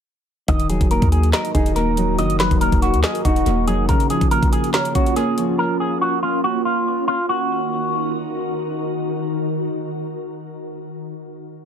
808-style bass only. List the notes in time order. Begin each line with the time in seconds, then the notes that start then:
0.48 D#1
0.81 D#1
1.02 D#2
1.55 D#1
2.18 F#1
2.51 D#1
2.72 D#1
2.94 D#2
3.25 D#1
3.46 D#1
3.67 F1